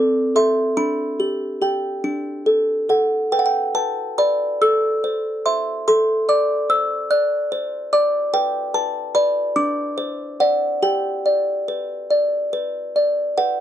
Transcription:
0.00 0.74 C4 medium
0.00 0.34 A4 medium
0.00 0.32 D6 medium
0.36 0.74 A4 soft
0.36 0.74 E5 soft
0.36 0.76 C6 medium
0.77 2.00 D4 soft
0.77 2.00 B5 medium
1.20 1.60 G4 soft
1.62 2.00 G4 soft
1.62 2.00 G5 soft
2.04 3.28 D4 soft
2.46 2.88 A4 soft
2.89 3.28 A4 soft
2.89 3.28 F#5 soft
3.32 3.73 B4 medium
3.32 3.39 G5 medium
3.39 3.46 F#5 medium
3.46 3.73 G5 medium
3.75 4.17 B4 soft
3.75 4.17 A5 medium
4.18 4.58 B4 soft
4.18 4.58 D5 soft
4.18 4.60 B5 medium
4.62 5.83 A4 medium
4.62 5.42 E6 medium
5.04 5.45 C5 soft
5.46 5.83 C5 soft
5.46 5.83 E5 soft
5.46 5.85 C6 medium
5.88 8.30 A4 medium
5.88 6.27 C6 medium
6.29 6.94 D5 soft
6.29 6.68 D6 medium
6.70 7.35 C5 soft
6.70 7.09 E6 medium
7.11 7.76 D5 soft
7.11 7.89 F#6 medium
7.52 8.18 C5 soft
7.93 8.34 D5 soft
7.93 8.32 D6 medium
8.34 8.73 B4 medium
8.34 8.73 G5 medium
8.74 9.14 B4 soft
8.74 9.14 A5 medium
9.15 9.52 B4 soft
9.15 9.52 D5 soft
9.15 9.55 B5 medium
9.56 10.79 D4 medium
9.56 10.37 D6 medium
9.98 10.39 C5 soft
10.40 10.79 C5 soft
10.40 10.79 D5 soft
10.40 10.82 F#5 medium
10.82 13.34 G4 medium
10.82 12.06 G5 medium
11.26 11.93 D5 soft
11.68 12.36 B4 soft
12.10 12.79 D5 soft
12.53 13.21 B4 soft
12.96 13.38 D5 soft
13.38 13.60 B4 soft
13.38 13.60 F#5 medium

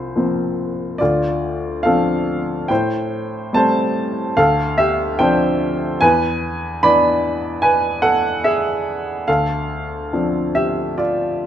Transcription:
0.00 0.96 C2 soft
0.00 0.96 F4 soft
0.00 1.04 C5 soft
0.16 0.98 F3 soft
0.16 0.99 A#3 soft
0.16 0.99 C4 soft
0.98 2.67 D2 soft
0.98 1.82 F4 soft
0.98 1.87 D5 medium
1.83 2.67 F3 soft
1.83 2.68 C4 soft
1.83 2.68 D4 soft
1.83 2.66 A4 soft
1.83 2.71 F5 medium
2.68 4.34 A2 soft
2.68 3.51 C5 soft
2.68 3.57 G5 medium
3.53 4.35 G3 soft
3.53 4.35 A3 soft
3.53 4.36 C4 soft
3.53 4.35 C5 medium
3.53 4.41 A5 medium
4.37 5.98 D2 medium
4.37 4.76 A4 medium
4.37 4.80 F5 medium
4.78 5.17 G4 medium
4.78 5.16 E5 medium
5.19 6.00 F3 soft
5.19 6.00 C4 soft
5.19 6.00 D4 soft
5.19 5.98 C5 medium
5.19 6.04 G5 medium
6.01 9.24 E2 medium
6.01 6.80 B4 medium
6.01 6.85 G#5 medium
6.83 9.23 E3 soft
6.83 9.24 B3 soft
6.83 9.24 D4 soft
6.83 7.60 D5 medium
6.83 7.66 B5 medium
7.62 8.01 B4 medium
7.62 8.04 G#5 medium
8.02 8.41 A4 medium
8.02 8.45 F#5 medium
8.44 9.24 G#4 medium
8.44 9.30 E5 medium
9.28 11.46 D2 soft
9.28 10.50 A4 soft
9.28 10.50 F5 medium
10.13 11.46 F3 soft
10.13 11.46 C4 soft
10.13 11.46 D4 soft
10.55 10.95 G4 soft
10.55 10.99 E5 medium
10.98 11.46 F4 soft
10.98 11.46 D5 medium

